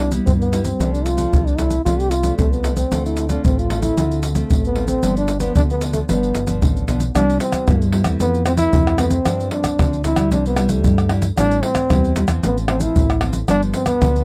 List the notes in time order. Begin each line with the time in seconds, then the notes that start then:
Already playing: C2 C3
0.00 D4, pandeiro
0.11 G3 B3 E4, pandeiro, maracas, surdo
0.26 G2 C4, pandeiro, maracas, surdo
0.40 B3, pandeiro, maracas
0.52 G3 B3 E4, pandeiro, maracas
0.64 C4, pandeiro, maracas, surdo
0.79 C2 C3 F3 A3 D4, pandeiro, maracas, surdo
0.93 D4, pandeiro, maracas
1.05 F4, pandeiro, maracas
1.17 F3 A3 D4, pandeiro, maracas, surdo
1.32 C2 C3, pandeiro, maracas, surdo
1.47 D4, pandeiro, maracas
1.58 F3 A3 D4 E4, pandeiro, maracas, surdo
1.71 pandeiro, maracas, surdo
1.85 C2 C3 F3 A3 D4 F4, pandeiro, maracas, surdo
2.00 G4, pandeiro, maracas
2.10 F4, pandeiro, maracas
2.23 F3 A3 D4, pandeiro, maracas, surdo
2.38 C2 C3 A3, pandeiro, maracas, surdo
2.52 B3, pandeiro, maracas
2.63 F3 A3 D4, pandeiro, maracas
2.76 C4, pandeiro, maracas, surdo
2.92 D2 D3 A3 C4 F4, pandeiro, maracas, surdo
3.06 E4, pandeiro, maracas
3.17 pandeiro, maracas
3.29 A3 C4 D4 F4, pandeiro, maracas, surdo
3.44 A1 A2 C4, pandeiro, maracas, surdo
3.58 F4, pandeiro, maracas
3.69 A3 C4 F4, pandeiro, surdo
3.81 E4, pandeiro, maracas, surdo
3.97 D2 D3 A3 C4 F4, pandeiro, maracas, surdo
4.11 pandeiro, maracas
4.23 pandeiro, maracas
4.35 A3 C4 F4, pandeiro, maracas, surdo
4.50 A1 A2 A3, pandeiro, maracas, surdo
4.64 B3, pandeiro, maracas
4.75 A3 C4 F4, pandeiro
4.88 C4, pandeiro, maracas, surdo
5.03 G1 G2 F3 B3 D4, pandeiro, maracas, surdo
5.17 D4, pandeiro, maracas
5.28 pandeiro, maracas
5.40 F3 B3 D4, pandeiro, maracas, surdo
5.56 D2 D3 D4, pandeiro, maracas, surdo
5.70 B3, pandeiro, maracas
5.81 F3 B3 D4, pandeiro, maracas
5.93 A3, pandeiro, maracas, surdo
6.09 G1 G2 F3 B3 D4, pandeiro, maracas, surdo
6.23 pandeiro, maracas
6.35 G1, pandeiro, maracas
6.47 F3 B3 D4, pandeiro, maracas, surdo
6.62 A1 D3, pandeiro, maracas, surdo
6.77 pandeiro, maracas
6.87 B1 F3 B3 D4, pandeiro, maracas
7.00 pandeiro, maracas, surdo
7.15 C2 C3 G3 B3 D4 E4, pandeiro, tamborim, maracas, surdo
7.30 pandeiro, maracas
7.40 C4, pandeiro, maracas
7.52 pandeiro, tamborim, maracas, surdo
7.68 G2 G3 B3 E4, pandeiro, tamborim, maracas, surdo
7.82 pandeiro, maracas
7.92 G3 B3 E4, pandeiro, surdo
8.04 E2 E3 A3 C4, pandeiro, tamborim, maracas, surdo
8.20 F2 B3, pandeiro, maracas, surdo
8.34 pandeiro, maracas
8.46 E3 A3 C4, pandeiro, tamborim, maracas
8.57 E4, pandeiro, maracas, surdo
8.73 F2 C3, pandeiro, maracas, surdo
8.87 pandeiro, tamborim, maracas
8.98 E3 A3 B3 C4, pandeiro, tamborim, maracas
9.10 C4, pandeiro, maracas, surdo
9.25 G2 F3 C4 D4, pandeiro, tamborim, maracas, surdo
9.40 pandeiro, maracas
9.51 D4, pandeiro
9.64 pandeiro, tamborim, maracas, surdo
9.79 D2 D3 F3 C4 D4, pandeiro, tamborim, maracas, surdo
9.93 pandeiro, maracas
10.04 F3 C4 D4 E4, pandeiro, maracas, surdo
10.16 D2 G3 D4 E4, pandeiro, tamborim, maracas, surdo
10.31 C2 C3 D4, pandeiro, maracas, surdo
10.46 B3, pandeiro, maracas
10.56 G3 D4 E4, pandeiro, tamborim, maracas
10.69 A3, pandeiro, maracas, surdo
10.84 G2 G3, pandeiro, maracas, surdo
10.98 pandeiro, tamborim, maracas
11.09 G3 D4 E4, pandeiro, tamborim
11.22 pandeiro, maracas, surdo
11.37 A1 A2 G3 C4 D4 E4, pandeiro, tamborim, maracas, surdo
11.51 pandeiro, maracas
11.63 C4, pandeiro
11.75 pandeiro, tamborim, maracas, surdo
11.90 E2 E3 G3 C4 E4, pandeiro, tamborim, maracas, surdo
12.04 pandeiro, maracas
12.16 G3 C4 E4, pandeiro, maracas, surdo
12.28 E2 F3 C4 F4, pandeiro, tamborim, maracas, surdo
12.43 A1 A2 B3, pandeiro, maracas, surdo
12.58 pandeiro, maracas
12.68 F3 C4 F4, pandeiro, tamborim
12.80 E4, pandeiro, maracas, surdo
12.96 A1 A2, pandeiro, maracas, surdo
13.10 pandeiro, tamborim, maracas
13.21 F3 C4 F4, pandeiro, tamborim
13.33 pandeiro, maracas, surdo
13.48 G1 G2 F3 B3 D4, pandeiro, tamborim, maracas, surdo
13.62 pandeiro, maracas
13.74 C4, pandeiro, maracas
13.86 B3, pandeiro, tamborim, maracas, surdo
14.01 D2 D3 F3 B3 D4, pandeiro, tamborim, maracas, surdo
14.16 pandeiro, maracas